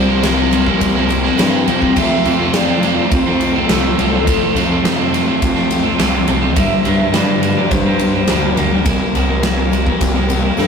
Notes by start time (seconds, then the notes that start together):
Already playing: C2 C3 F3 C5 G5
0.08 G3 A#3 C4 E4
0.22 C3 G3 A#3 C4 E4 A#4, snare, ride, tambourine
0.37 G3 A#3 C4 E4
0.51 C3 G3 A#3 E4, ride, tambourine
0.66 G3 A#3 C4 E4, kick
0.80 C2, kick, ride, tambourine
0.95 G3 A#3 C4 E4
1.08 C3 G3 C4, ride, tambourine
1.23 G3 A#3 C4 E4, snare
1.37 G2 C3 G3 A#3 C4 E4, snare, ride, tambourine
1.66 F2 C3 G3 A#3 C4 E4, ride, tambourine
1.80 G3 A#3 C4 E4, kick
1.96 F2 C3 F3 A3 C4 C5 E5 A5, kick, tambourine, crash
2.25 F2 C3 F3 A3 C4, ride, tambourine
2.39 C3 F3 A3 C4
2.53 F2 C3 F3 A3 C4 D5, snare, ride, tambourine
2.67 C3 F3 A3 C4
2.82 C3 F3 A3 C4, ride, tambourine
2.97 C3 F3 A3 C4
3.11 F2 C5, kick, ride, tambourine
3.26 C3 F3 A3 C4
3.40 F2 C3 F3, ride, tambourine
3.55 C3 F3 A3 C4
3.69 C2 F2 C3 F3 A3 C4 A4, snare, ride, tambourine
3.98 C2 F2 C3 F3 A3 C4 A4, ride
4.13 C3 F3 A3 C4
4.27 F2 C3 F3 A3 C4, kick, ride, tambourine
4.55 F2 C3 F3 A3 C4, ride, tambourine
4.70 C3 F3 A3 C4
4.84 F2 C3 F3 A3 C4, snare, ride, tambourine
4.98 C3 F3 A3 C4
5.11 C3 F3 A3 C4, ride, tambourine
5.26 C3 F3 A3 C4
5.42 F2, kick, ride
5.55 C3 F3 A3 C4, snare
5.70 F2 C3 F3, ride, tambourine
5.83 C3 F3 A3 C4
5.98 C2 F2 C3 F3 A3 C4, snare, ride, tambourine
6.27 C2 F2 C3 F3 A3 C4, ride
6.41 C3 F3 A3 C4
6.55 G2 D3 G3 A#3 D4 E5, kick, ride, tambourine
6.83 G2 D3 G3 A#3 D4, ride
6.98 D3 G3 A#3 D4
7.12 G2 D3 G3 A#3 D4 D5, snare, ride, tambourine
7.27 D3 G3 A#3 D4
7.42 D3 G3 A#3 D4, ride, tambourine
7.57 D3 G3 A#3 D4
7.70 G2 C5, kick, ride, tambourine
7.86 D3 G3 A#3 D4
7.99 G2 D3 G3, ride, tambourine
8.14 D3 G3 A#3 D4
8.27 D2 G2 D3 G3 A#3 D4, snare, ride, tambourine
8.55 D2 G2 D3 G3 A#3 D4 A#4, ride
8.72 D3 G3 A#3 D4
8.85 C2 C3 G3 A#3 C4 E4 G5, kick, ride, tambourine
9.15 C2 C3 G3 A#3 C4 E4, ride, tambourine
9.28 G3 A#3 C4 E4
9.43 C3 G3 A#3 C4 E4, snare, ride, tambourine
9.57 G3 A#3 C4 E4
9.72 C3 G3 A#3 E4, ride, tambourine
9.86 G3 A#3 C4 E4, kick
10.01 C2, kick, ride, tambourine
10.14 G3 A#3 C4 E4
10.29 C3 G3 C4, ride, tambourine
10.43 G3 A#3 C4 E4
10.57 G2 C3 G3 A#3 C4 E4 A4, snare, tambourine